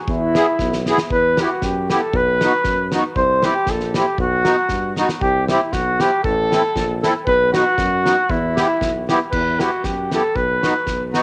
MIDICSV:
0, 0, Header, 1, 5, 480
1, 0, Start_track
1, 0, Key_signature, 1, "minor"
1, 0, Tempo, 513699
1, 72, Time_signature, 2, 2, 24, 8
1, 10490, End_track
2, 0, Start_track
2, 0, Title_t, "Flugelhorn"
2, 0, Program_c, 0, 56
2, 100, Note_on_c, 0, 64, 90
2, 788, Note_off_c, 0, 64, 0
2, 1042, Note_on_c, 0, 71, 98
2, 1320, Note_on_c, 0, 66, 78
2, 1334, Note_off_c, 0, 71, 0
2, 1531, Note_on_c, 0, 67, 60
2, 1545, Note_off_c, 0, 66, 0
2, 1782, Note_off_c, 0, 67, 0
2, 1796, Note_on_c, 0, 69, 80
2, 2020, Note_on_c, 0, 71, 102
2, 2034, Note_off_c, 0, 69, 0
2, 2743, Note_off_c, 0, 71, 0
2, 2964, Note_on_c, 0, 72, 106
2, 3228, Note_on_c, 0, 67, 97
2, 3242, Note_off_c, 0, 72, 0
2, 3460, Note_on_c, 0, 69, 78
2, 3474, Note_off_c, 0, 67, 0
2, 3702, Note_off_c, 0, 69, 0
2, 3722, Note_on_c, 0, 67, 76
2, 3911, Note_off_c, 0, 67, 0
2, 3929, Note_on_c, 0, 66, 88
2, 4622, Note_off_c, 0, 66, 0
2, 4872, Note_on_c, 0, 67, 92
2, 5113, Note_off_c, 0, 67, 0
2, 5118, Note_on_c, 0, 64, 68
2, 5354, Note_on_c, 0, 66, 78
2, 5368, Note_off_c, 0, 64, 0
2, 5613, Note_on_c, 0, 67, 87
2, 5627, Note_off_c, 0, 66, 0
2, 5826, Note_off_c, 0, 67, 0
2, 5832, Note_on_c, 0, 69, 107
2, 6527, Note_off_c, 0, 69, 0
2, 6781, Note_on_c, 0, 71, 115
2, 7021, Note_off_c, 0, 71, 0
2, 7038, Note_on_c, 0, 66, 102
2, 7759, Note_on_c, 0, 64, 87
2, 7773, Note_off_c, 0, 66, 0
2, 8494, Note_off_c, 0, 64, 0
2, 8700, Note_on_c, 0, 71, 95
2, 8972, Note_on_c, 0, 66, 81
2, 8986, Note_off_c, 0, 71, 0
2, 9201, Note_on_c, 0, 67, 63
2, 9215, Note_off_c, 0, 66, 0
2, 9455, Note_off_c, 0, 67, 0
2, 9472, Note_on_c, 0, 69, 86
2, 9678, Note_on_c, 0, 71, 93
2, 9692, Note_off_c, 0, 69, 0
2, 10411, Note_off_c, 0, 71, 0
2, 10490, End_track
3, 0, Start_track
3, 0, Title_t, "Accordion"
3, 0, Program_c, 1, 21
3, 335, Note_on_c, 1, 68, 69
3, 337, Note_on_c, 1, 59, 61
3, 337, Note_on_c, 1, 64, 54
3, 432, Note_off_c, 1, 68, 0
3, 433, Note_off_c, 1, 59, 0
3, 433, Note_off_c, 1, 64, 0
3, 822, Note_on_c, 1, 64, 60
3, 824, Note_on_c, 1, 68, 66
3, 828, Note_on_c, 1, 59, 66
3, 917, Note_off_c, 1, 64, 0
3, 918, Note_off_c, 1, 68, 0
3, 920, Note_off_c, 1, 59, 0
3, 1302, Note_on_c, 1, 59, 54
3, 1303, Note_on_c, 1, 67, 62
3, 1306, Note_on_c, 1, 64, 53
3, 1398, Note_off_c, 1, 59, 0
3, 1399, Note_off_c, 1, 67, 0
3, 1400, Note_off_c, 1, 64, 0
3, 1780, Note_on_c, 1, 64, 51
3, 1781, Note_on_c, 1, 59, 53
3, 1782, Note_on_c, 1, 67, 66
3, 1877, Note_off_c, 1, 59, 0
3, 1877, Note_off_c, 1, 64, 0
3, 1878, Note_off_c, 1, 67, 0
3, 2266, Note_on_c, 1, 59, 60
3, 2272, Note_on_c, 1, 63, 53
3, 2274, Note_on_c, 1, 66, 72
3, 2359, Note_off_c, 1, 59, 0
3, 2361, Note_off_c, 1, 63, 0
3, 2363, Note_off_c, 1, 66, 0
3, 2745, Note_on_c, 1, 59, 62
3, 2745, Note_on_c, 1, 63, 66
3, 2748, Note_on_c, 1, 66, 64
3, 2837, Note_off_c, 1, 59, 0
3, 2837, Note_off_c, 1, 63, 0
3, 2839, Note_off_c, 1, 66, 0
3, 3208, Note_on_c, 1, 60, 58
3, 3209, Note_on_c, 1, 64, 57
3, 3211, Note_on_c, 1, 67, 70
3, 3307, Note_off_c, 1, 60, 0
3, 3308, Note_off_c, 1, 64, 0
3, 3309, Note_off_c, 1, 67, 0
3, 3692, Note_on_c, 1, 60, 49
3, 3695, Note_on_c, 1, 64, 46
3, 3695, Note_on_c, 1, 67, 54
3, 3789, Note_off_c, 1, 60, 0
3, 3790, Note_off_c, 1, 64, 0
3, 3790, Note_off_c, 1, 67, 0
3, 4153, Note_on_c, 1, 63, 50
3, 4155, Note_on_c, 1, 66, 73
3, 4161, Note_on_c, 1, 59, 60
3, 4260, Note_off_c, 1, 63, 0
3, 4261, Note_off_c, 1, 66, 0
3, 4264, Note_off_c, 1, 59, 0
3, 4651, Note_on_c, 1, 59, 57
3, 4653, Note_on_c, 1, 63, 65
3, 4654, Note_on_c, 1, 66, 70
3, 4751, Note_off_c, 1, 59, 0
3, 4752, Note_off_c, 1, 63, 0
3, 4752, Note_off_c, 1, 66, 0
3, 5142, Note_on_c, 1, 60, 57
3, 5142, Note_on_c, 1, 64, 52
3, 5142, Note_on_c, 1, 67, 66
3, 5236, Note_off_c, 1, 60, 0
3, 5236, Note_off_c, 1, 64, 0
3, 5236, Note_off_c, 1, 67, 0
3, 5605, Note_on_c, 1, 60, 51
3, 5608, Note_on_c, 1, 67, 53
3, 5609, Note_on_c, 1, 64, 49
3, 5706, Note_off_c, 1, 60, 0
3, 5708, Note_off_c, 1, 64, 0
3, 5708, Note_off_c, 1, 67, 0
3, 6091, Note_on_c, 1, 60, 68
3, 6093, Note_on_c, 1, 69, 67
3, 6096, Note_on_c, 1, 64, 49
3, 6188, Note_off_c, 1, 60, 0
3, 6189, Note_off_c, 1, 69, 0
3, 6190, Note_off_c, 1, 64, 0
3, 6570, Note_on_c, 1, 69, 68
3, 6571, Note_on_c, 1, 60, 76
3, 6574, Note_on_c, 1, 64, 58
3, 6666, Note_off_c, 1, 69, 0
3, 6667, Note_off_c, 1, 60, 0
3, 6668, Note_off_c, 1, 64, 0
3, 7041, Note_on_c, 1, 59, 62
3, 7044, Note_on_c, 1, 63, 55
3, 7047, Note_on_c, 1, 66, 70
3, 7140, Note_off_c, 1, 59, 0
3, 7142, Note_off_c, 1, 63, 0
3, 7143, Note_off_c, 1, 66, 0
3, 7519, Note_on_c, 1, 59, 52
3, 7521, Note_on_c, 1, 63, 53
3, 7525, Note_on_c, 1, 66, 55
3, 7620, Note_off_c, 1, 59, 0
3, 7621, Note_off_c, 1, 63, 0
3, 7623, Note_off_c, 1, 66, 0
3, 8000, Note_on_c, 1, 59, 55
3, 8000, Note_on_c, 1, 64, 47
3, 8001, Note_on_c, 1, 67, 70
3, 8102, Note_off_c, 1, 59, 0
3, 8102, Note_off_c, 1, 64, 0
3, 8103, Note_off_c, 1, 67, 0
3, 8493, Note_on_c, 1, 64, 56
3, 8494, Note_on_c, 1, 67, 73
3, 8495, Note_on_c, 1, 59, 59
3, 8591, Note_off_c, 1, 59, 0
3, 8591, Note_off_c, 1, 64, 0
3, 8591, Note_off_c, 1, 67, 0
3, 8967, Note_on_c, 1, 59, 52
3, 8968, Note_on_c, 1, 64, 48
3, 8969, Note_on_c, 1, 67, 59
3, 9069, Note_off_c, 1, 59, 0
3, 9069, Note_off_c, 1, 64, 0
3, 9069, Note_off_c, 1, 67, 0
3, 9460, Note_on_c, 1, 59, 51
3, 9461, Note_on_c, 1, 67, 52
3, 9464, Note_on_c, 1, 64, 49
3, 9556, Note_off_c, 1, 59, 0
3, 9556, Note_off_c, 1, 67, 0
3, 9558, Note_off_c, 1, 64, 0
3, 9934, Note_on_c, 1, 59, 54
3, 9935, Note_on_c, 1, 66, 70
3, 9940, Note_on_c, 1, 63, 49
3, 10032, Note_off_c, 1, 59, 0
3, 10032, Note_off_c, 1, 66, 0
3, 10035, Note_off_c, 1, 63, 0
3, 10404, Note_on_c, 1, 59, 65
3, 10405, Note_on_c, 1, 63, 64
3, 10408, Note_on_c, 1, 66, 71
3, 10490, Note_off_c, 1, 59, 0
3, 10490, Note_off_c, 1, 63, 0
3, 10490, Note_off_c, 1, 66, 0
3, 10490, End_track
4, 0, Start_track
4, 0, Title_t, "Tuba"
4, 0, Program_c, 2, 58
4, 71, Note_on_c, 2, 40, 83
4, 384, Note_off_c, 2, 40, 0
4, 554, Note_on_c, 2, 35, 81
4, 867, Note_off_c, 2, 35, 0
4, 1026, Note_on_c, 2, 40, 78
4, 1342, Note_off_c, 2, 40, 0
4, 1513, Note_on_c, 2, 42, 69
4, 1826, Note_off_c, 2, 42, 0
4, 1992, Note_on_c, 2, 35, 97
4, 2304, Note_off_c, 2, 35, 0
4, 2472, Note_on_c, 2, 42, 65
4, 2783, Note_off_c, 2, 42, 0
4, 2952, Note_on_c, 2, 36, 98
4, 3263, Note_off_c, 2, 36, 0
4, 3428, Note_on_c, 2, 34, 80
4, 3740, Note_off_c, 2, 34, 0
4, 3907, Note_on_c, 2, 35, 94
4, 4220, Note_off_c, 2, 35, 0
4, 4384, Note_on_c, 2, 43, 60
4, 4700, Note_off_c, 2, 43, 0
4, 4873, Note_on_c, 2, 36, 81
4, 5185, Note_off_c, 2, 36, 0
4, 5353, Note_on_c, 2, 35, 67
4, 5663, Note_off_c, 2, 35, 0
4, 5834, Note_on_c, 2, 33, 85
4, 6143, Note_off_c, 2, 33, 0
4, 6309, Note_on_c, 2, 34, 78
4, 6618, Note_off_c, 2, 34, 0
4, 6792, Note_on_c, 2, 35, 91
4, 7100, Note_off_c, 2, 35, 0
4, 7267, Note_on_c, 2, 42, 82
4, 7578, Note_off_c, 2, 42, 0
4, 7748, Note_on_c, 2, 40, 100
4, 8061, Note_off_c, 2, 40, 0
4, 8231, Note_on_c, 2, 35, 64
4, 8544, Note_off_c, 2, 35, 0
4, 8713, Note_on_c, 2, 40, 91
4, 9025, Note_off_c, 2, 40, 0
4, 9191, Note_on_c, 2, 42, 60
4, 9504, Note_off_c, 2, 42, 0
4, 9675, Note_on_c, 2, 35, 74
4, 9985, Note_off_c, 2, 35, 0
4, 10155, Note_on_c, 2, 35, 62
4, 10464, Note_off_c, 2, 35, 0
4, 10490, End_track
5, 0, Start_track
5, 0, Title_t, "Drums"
5, 72, Note_on_c, 9, 36, 77
5, 165, Note_off_c, 9, 36, 0
5, 328, Note_on_c, 9, 38, 68
5, 421, Note_off_c, 9, 38, 0
5, 553, Note_on_c, 9, 36, 50
5, 554, Note_on_c, 9, 38, 35
5, 646, Note_off_c, 9, 36, 0
5, 647, Note_off_c, 9, 38, 0
5, 680, Note_on_c, 9, 38, 41
5, 774, Note_off_c, 9, 38, 0
5, 804, Note_on_c, 9, 38, 46
5, 898, Note_off_c, 9, 38, 0
5, 915, Note_on_c, 9, 38, 63
5, 1008, Note_off_c, 9, 38, 0
5, 1032, Note_on_c, 9, 36, 68
5, 1125, Note_off_c, 9, 36, 0
5, 1284, Note_on_c, 9, 38, 76
5, 1377, Note_off_c, 9, 38, 0
5, 1511, Note_on_c, 9, 38, 46
5, 1516, Note_on_c, 9, 36, 50
5, 1605, Note_off_c, 9, 38, 0
5, 1610, Note_off_c, 9, 36, 0
5, 1774, Note_on_c, 9, 38, 61
5, 1867, Note_off_c, 9, 38, 0
5, 1996, Note_on_c, 9, 36, 78
5, 2089, Note_off_c, 9, 36, 0
5, 2252, Note_on_c, 9, 38, 73
5, 2345, Note_off_c, 9, 38, 0
5, 2468, Note_on_c, 9, 38, 41
5, 2474, Note_on_c, 9, 36, 55
5, 2561, Note_off_c, 9, 38, 0
5, 2567, Note_off_c, 9, 36, 0
5, 2725, Note_on_c, 9, 38, 65
5, 2818, Note_off_c, 9, 38, 0
5, 2951, Note_on_c, 9, 36, 71
5, 3044, Note_off_c, 9, 36, 0
5, 3200, Note_on_c, 9, 38, 70
5, 3294, Note_off_c, 9, 38, 0
5, 3423, Note_on_c, 9, 38, 50
5, 3428, Note_on_c, 9, 36, 52
5, 3516, Note_off_c, 9, 38, 0
5, 3522, Note_off_c, 9, 36, 0
5, 3551, Note_on_c, 9, 38, 22
5, 3644, Note_off_c, 9, 38, 0
5, 3684, Note_on_c, 9, 38, 68
5, 3777, Note_off_c, 9, 38, 0
5, 3907, Note_on_c, 9, 36, 72
5, 4001, Note_off_c, 9, 36, 0
5, 4158, Note_on_c, 9, 38, 77
5, 4251, Note_off_c, 9, 38, 0
5, 4379, Note_on_c, 9, 38, 37
5, 4387, Note_on_c, 9, 36, 48
5, 4472, Note_off_c, 9, 38, 0
5, 4480, Note_off_c, 9, 36, 0
5, 4638, Note_on_c, 9, 38, 49
5, 4731, Note_off_c, 9, 38, 0
5, 4754, Note_on_c, 9, 38, 55
5, 4847, Note_off_c, 9, 38, 0
5, 4872, Note_on_c, 9, 36, 72
5, 4965, Note_off_c, 9, 36, 0
5, 5125, Note_on_c, 9, 38, 68
5, 5219, Note_off_c, 9, 38, 0
5, 5351, Note_on_c, 9, 38, 46
5, 5354, Note_on_c, 9, 36, 53
5, 5445, Note_off_c, 9, 38, 0
5, 5447, Note_off_c, 9, 36, 0
5, 5604, Note_on_c, 9, 38, 69
5, 5698, Note_off_c, 9, 38, 0
5, 5833, Note_on_c, 9, 36, 78
5, 5926, Note_off_c, 9, 36, 0
5, 6093, Note_on_c, 9, 38, 68
5, 6186, Note_off_c, 9, 38, 0
5, 6313, Note_on_c, 9, 36, 44
5, 6317, Note_on_c, 9, 38, 54
5, 6407, Note_off_c, 9, 36, 0
5, 6411, Note_off_c, 9, 38, 0
5, 6575, Note_on_c, 9, 38, 63
5, 6668, Note_off_c, 9, 38, 0
5, 6792, Note_on_c, 9, 36, 66
5, 6886, Note_off_c, 9, 36, 0
5, 7044, Note_on_c, 9, 38, 76
5, 7137, Note_off_c, 9, 38, 0
5, 7269, Note_on_c, 9, 36, 57
5, 7270, Note_on_c, 9, 38, 45
5, 7362, Note_off_c, 9, 36, 0
5, 7363, Note_off_c, 9, 38, 0
5, 7528, Note_on_c, 9, 38, 54
5, 7621, Note_off_c, 9, 38, 0
5, 7750, Note_on_c, 9, 36, 73
5, 7843, Note_off_c, 9, 36, 0
5, 8008, Note_on_c, 9, 38, 78
5, 8102, Note_off_c, 9, 38, 0
5, 8233, Note_on_c, 9, 36, 45
5, 8236, Note_on_c, 9, 38, 48
5, 8327, Note_off_c, 9, 36, 0
5, 8330, Note_off_c, 9, 38, 0
5, 8492, Note_on_c, 9, 38, 61
5, 8585, Note_off_c, 9, 38, 0
5, 8714, Note_on_c, 9, 36, 74
5, 8714, Note_on_c, 9, 49, 64
5, 8807, Note_off_c, 9, 36, 0
5, 8807, Note_off_c, 9, 49, 0
5, 8968, Note_on_c, 9, 38, 63
5, 9061, Note_off_c, 9, 38, 0
5, 9193, Note_on_c, 9, 38, 45
5, 9195, Note_on_c, 9, 36, 52
5, 9287, Note_off_c, 9, 38, 0
5, 9288, Note_off_c, 9, 36, 0
5, 9450, Note_on_c, 9, 38, 60
5, 9544, Note_off_c, 9, 38, 0
5, 9676, Note_on_c, 9, 36, 58
5, 9769, Note_off_c, 9, 36, 0
5, 9934, Note_on_c, 9, 38, 70
5, 10028, Note_off_c, 9, 38, 0
5, 10152, Note_on_c, 9, 38, 46
5, 10155, Note_on_c, 9, 36, 45
5, 10245, Note_off_c, 9, 38, 0
5, 10249, Note_off_c, 9, 36, 0
5, 10409, Note_on_c, 9, 38, 52
5, 10490, Note_off_c, 9, 38, 0
5, 10490, End_track
0, 0, End_of_file